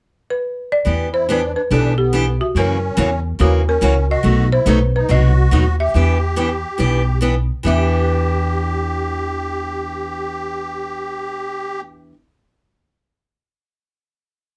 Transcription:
0.30 B4
0.72 D5
0.85 E2 E3 B3 D4 G4
1.12 E4 C5
1.28 E3 B3 D4 G4 B4
1.54 D4 B4
1.71 B1 E3 B3 D4 G4 A4
1.97 B3 G4
2.13 E3 B3 D4 G4
2.39 A3 F#4
2.55 F#2 C#3 E3 A#3 C#4 F#4 A#4
2.97 E2 C#3 E3 A#3 C#4 F#4
3.39 D#2 C#3 E3 A#3 C#4 F#4
3.68 C#4 A#4
3.81 C#2 C#3 E3 A#3 C#4 F#4
4.10 F#4 D#5
4.23 B1 B2 F#3 A3 D#4 F#4
4.51 E4 C5
4.66 B1 B2 F#3 A3 D#4 F#4 B4
4.96 D#4 B4
5.09 C2 B2 F#3 A3 D#4 F#4 D#5
5.51 D#2 B2 F#3 A3 D#4 F#4
5.80 G4 E5
5.94 E2 E3 B3 D4 G4
6.36 E3 B3 D4 G4
6.78 B1 E3 B3 D4 G4
7.21 E3 B3 D4 G4
7.63 E2 E3 B3 D4 G4 E5
7.68 G4

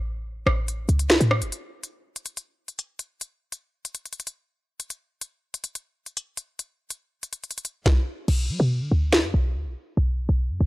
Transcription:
Already playing: A1
0.46 A1, cross-stick
0.68 closed hi-hat
0.89 C#2, closed hi-hat
0.99 closed hi-hat
1.10 finger snap, snare
1.20 A2, closed hi-hat
1.31 cross-stick
1.42 G1, closed hi-hat
1.52 closed hi-hat
1.83 closed hi-hat
2.16 closed hi-hat
2.26 closed hi-hat
2.37 closed hi-hat
2.68 closed hi-hat
2.79 closed hi-hat
2.99 closed hi-hat
3.21 closed hi-hat
3.52 closed hi-hat
3.85 closed hi-hat
3.95 closed hi-hat
4.05 closed hi-hat
4.13 closed hi-hat
4.20 closed hi-hat
4.27 closed hi-hat
4.80 closed hi-hat
4.90 closed hi-hat
5.21 closed hi-hat
5.54 closed hi-hat
5.64 closed hi-hat
5.75 closed hi-hat
6.06 closed hi-hat
6.17 closed hi-hat
6.37 closed hi-hat
6.59 closed hi-hat
6.90 closed hi-hat
7.23 closed hi-hat
7.33 closed hi-hat
7.44 closed hi-hat
7.51 closed hi-hat
7.58 closed hi-hat
7.65 closed hi-hat
7.86 kick, snare
8.28 B1, crash
8.49 F#3
8.60 B2
8.81 D3
8.91 D2
9.12 finger snap, snare
9.23 F#2
9.34 B1
9.55 D2
9.66 B1
9.97 B1
10.29 B1
10.50 F#2
10.61 B1

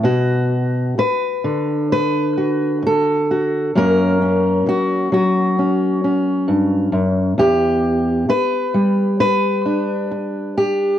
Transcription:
0.03 B2 F#4
0.98 B4, muted steel-string acoustic guitar stroke
1.44 D3
1.92 B4
2.38 F#4
2.83 muted steel-string acoustic guitar stroke
2.87 A4
3.31 F#4
3.76 F#2 F#3 A#3 C#4 A#4
4.22 C#4
4.66 F#4, muted steel-string acoustic guitar stroke
5.12 F#3 F#4
5.59 C#4
6.04 C#4
6.48 G2
6.92 F#2
7.38 E2 G4
8.29 B4, muted steel-string acoustic guitar stroke
8.74 G3
9.20 B4
9.66 D4
10.12 muted steel-string acoustic guitar stroke
10.58 G4

